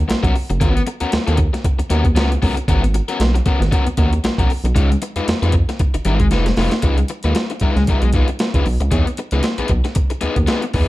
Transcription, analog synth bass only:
0.10 0.15 B1 medium
0.23 0.33 B1 medium
0.50 0.59 F#1 medium
0.61 0.82 G#1 loud
1.01 1.06 D#2 soft
1.13 1.19 D#2 soft
1.28 1.48 D#2 medium
1.79 1.84 D#2 soft
1.91 2.18 D#2 medium
2.17 2.37 C#2 loud
2.43 2.54 C#2 medium
2.68 3.01 G#1 loud
3.20 3.41 B1 loud
3.60 3.69 G#1 medium
3.87 3.91 D#2 soft
3.98 4.19 D#2 loud
4.24 4.30 B1 medium
4.38 4.47 B1 medium
4.64 4.73 B1 medium
4.76 4.97 C#2 loud
5.16 5.21 F2 soft
5.28 5.34 F2 medium
5.42 5.63 F2 medium
5.94 5.99 G#1 soft
6.05 6.33 G#1 medium
6.31 6.52 F1 medium
6.57 6.69 F1 medium
6.83 7.04 C#2 loud
7.24 7.34 D#2 medium
7.61 7.67 C#2 soft
7.76 7.86 C#2 medium
7.88 7.94 B1 medium
8.02 8.23 B1 medium
8.54 8.64 C#2 medium
8.66 8.78 B1 medium
8.81 8.90 C#2 medium
8.92 9.04 E2 medium
9.32 9.42 C#2 medium
9.58 9.63 B1 soft
9.70 9.82 B1 medium
10.23 10.28 D#2 soft
10.37 10.46 D#2 medium
10.74 10.86 E2 loud

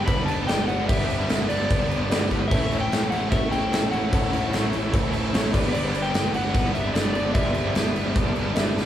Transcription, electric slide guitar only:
0.06 0.25 B5 loud
0.26 0.47 A5 loud
0.47 0.67 G5 loud
0.68 0.88 F#5 medium
0.88 1.48 E5 loud
1.49 2.26 D5 loud
2.48 2.80 E5 loud
2.81 3.10 G5 medium
3.10 3.30 F#5 medium
3.31 3.51 E5 medium
3.51 3.91 G5 loud
3.91 4.68 F#5 loud
5.73 6.04 D5 loud
6.02 6.31 G5 loud
6.35 6.74 F#5 loud
6.74 6.93 E5 medium
6.94 7.12 D5 loud
7.13 7.34 D5 loud
7.34 8.52 E5 medium

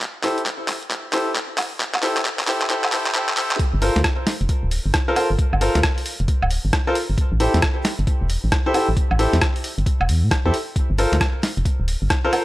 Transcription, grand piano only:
0.24 0.40 E4 medium
0.24 0.40 G4 medium
0.24 0.40 A4 medium
0.24 0.40 C5 medium
1.13 1.29 E4 medium
1.13 1.29 G4 medium
1.13 1.29 A4 medium
1.13 1.29 C5 medium
2.03 2.19 E4 medium
2.03 2.19 G4 medium
2.03 2.19 A4 medium
2.03 2.19 C5 medium
2.47 2.64 E4 medium
2.47 2.64 G4 medium
2.47 2.64 A4 medium
2.47 2.64 C5 medium
2.70 2.86 E4 medium
2.70 2.86 G4 medium
2.70 2.86 A4 medium
2.70 2.86 C5 loud
2.92 3.09 E4 medium
2.92 3.09 G4 medium
2.92 3.09 A4 medium
2.92 3.09 C5 loud
3.15 3.31 E4 medium
3.15 3.31 G4 medium
3.15 3.31 A4 medium
3.15 3.31 C5 loud
3.37 3.53 E4 medium
3.37 3.53 G4 medium
3.37 3.53 A4 medium
3.37 3.53 C5 loud
3.82 3.98 F4 medium
3.82 3.98 A4 medium
3.82 3.98 A#4 medium
3.82 3.98 C5 medium
5.08 5.15 F4 medium
5.08 5.15 A4 medium
5.08 5.15 A#4 medium
5.08 5.15 C5 loud
5.16 5.27 F4 medium
5.16 5.27 A4 medium
5.16 5.27 A#4 medium
5.16 5.27 C5 medium
5.61 5.77 F4 medium
5.61 5.77 A4 medium
5.61 5.77 A#4 medium
5.61 5.77 C5 medium
6.87 6.94 F4 loud
6.87 6.94 A4 medium
6.87 6.94 A#4 medium
6.87 6.94 C5 loud
7.40 7.56 E4 medium
7.40 7.56 G4 medium
7.40 7.56 A4 medium
7.40 7.56 C5 medium
8.66 8.73 E4 medium
8.66 8.73 G4 medium
8.66 8.73 A4 medium
8.66 8.73 C5 loud
8.74 8.86 E4 medium
8.74 8.86 G4 medium
8.74 8.86 A4 medium
8.74 8.86 C5 medium
9.19 9.35 E4 medium
9.19 9.35 G4 medium
9.19 9.35 A4 medium
9.19 9.35 C5 loud
10.45 10.52 E4 medium
10.45 10.52 G4 medium
10.45 10.52 A4 medium
10.45 10.52 C5 loud
10.98 11.15 F4 medium
10.98 11.15 A4 medium
10.98 11.15 A#4 medium
10.98 11.15 C5 medium
12.25 12.31 F4 loud
12.25 12.31 A4 medium
12.25 12.31 A#4 medium
12.25 12.31 C5 loud
12.33 12.44 F4 medium
12.33 12.44 A4 medium
12.33 12.44 A#4 medium
12.33 12.44 C5 medium

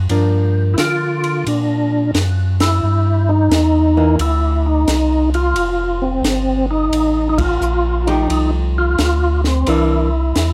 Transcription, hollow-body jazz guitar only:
0.10 2.01 F3 soft
0.10 2.01 A#3 soft
0.10 2.01 D4 medium
3.97 4.17 E3 medium
3.97 4.17 A#3 medium
8.08 8.94 F3 soft
8.08 8.94 A3 medium
8.08 8.94 D#4 medium
8.08 8.95 G4 medium
9.67 10.08 E3 medium
9.67 10.08 A#3 medium
9.67 10.09 D4 medium

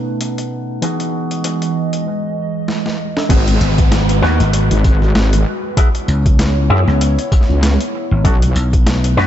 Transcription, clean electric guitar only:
0.00 0.79 B2 medium
0.00 0.79 C#4 medium
0.00 0.79 D#4 medium
0.00 0.79 F#4 medium
0.00 0.79 A4 medium
0.82 2.06 E3 medium
0.82 2.06 B3 medium
0.82 2.06 D#4 medium
0.82 2.06 F#4 medium
0.82 2.06 G#4 medium
3.29 3.40 B3 medium
3.29 3.40 D#4 medium
3.29 3.40 F#4 medium
3.29 3.40 G#4 medium
4.22 4.39 B3 medium
4.22 4.39 D#4 medium
4.22 4.39 F#4 medium
4.22 4.39 B4 medium
5.77 5.87 B3 medium
5.77 5.87 D#4 medium
5.77 5.87 E4 medium
5.77 5.87 G#4 medium
6.70 6.80 B3 medium
6.70 6.80 D#4 medium
6.70 6.80 E4 medium
6.70 6.80 G#4 medium
8.24 8.35 C#4 medium
8.24 8.35 D#4 medium
8.24 8.35 F#4 medium
8.24 8.35 A4 loud
9.17 9.27 C#4 medium
9.17 9.27 D#4 medium
9.17 9.27 F#4 medium
9.17 9.27 B4 loud

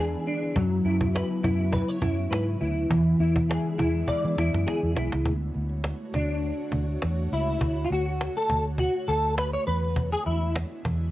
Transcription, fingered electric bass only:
0.00 0.14 E2 loud
0.56 0.79 F#2 loud
0.85 1.21 F#2 loud
1.44 1.80 F#2 loud
2.02 2.26 F#2 loud
2.31 2.55 G#2 medium
2.61 2.85 D2 medium
2.90 3.14 E2 loud
3.19 3.56 E2 medium
3.79 4.02 E2 medium
4.24 4.35 E3 medium
4.37 4.50 E2 loud
4.53 4.64 F#2 medium
4.83 4.94 E2 medium
4.96 5.09 B1 medium
5.13 5.23 C#2 medium
5.26 5.49 D2 loud
5.55 5.92 D2 medium
6.14 6.50 D2 medium
6.72 6.96 D2 loud
7.03 7.27 E2 medium
7.32 7.55 C#2 medium
7.61 7.85 D2 loud
7.90 8.27 D2 medium
8.50 8.86 D2 loud
9.08 9.55 D2 loud
9.67 10.14 E2 medium
10.26 10.63 E2 medium
10.85 11.11 E2 medium

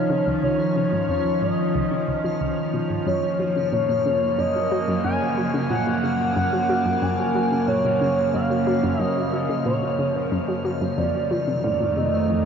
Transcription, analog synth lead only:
0.00 0.27 C#5 medium
0.43 1.05 C#5 loud
1.09 1.40 C#5 medium
1.42 2.70 D#5 loud
3.06 3.68 C#5 loud
3.73 4.40 C#5 loud
4.39 5.04 D#5 loud
5.04 5.50 G#5 loud
5.71 6.32 F#5 loud
6.36 7.04 F#5 loud
7.02 7.67 G#5 loud
7.68 8.30 C#5 loud
8.34 9.01 F5 loud
9.01 9.33 D#5 loud
9.33 9.65 D#5 loud
9.66 10.61 C#5 medium
10.97 11.60 D5 loud
11.63 11.98 D5 loud
11.96 12.45 D#5 loud

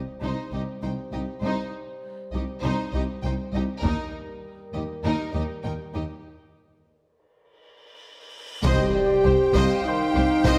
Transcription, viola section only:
0.23 0.51 D#4 soft
0.53 0.61 D#4 soft
0.84 0.92 D#4 soft
1.13 1.21 D#4 soft
1.44 1.72 D#4 soft
2.34 2.42 D#4 soft
2.63 2.91 D#4 medium
2.94 3.02 D#4 soft
3.25 3.33 D#4 soft
3.55 3.63 D#4 soft
3.84 4.12 D#4 medium
4.75 4.83 D#4 soft
5.05 5.33 D#4 medium
5.34 5.42 D#4 soft
5.65 5.73 D#4 soft
5.94 6.02 D#4 soft
8.65 8.93 C5 medium
9.25 9.33 C5 medium
9.55 9.83 C5 medium
10.15 10.23 C5 medium
10.45 10.59 C5 medium

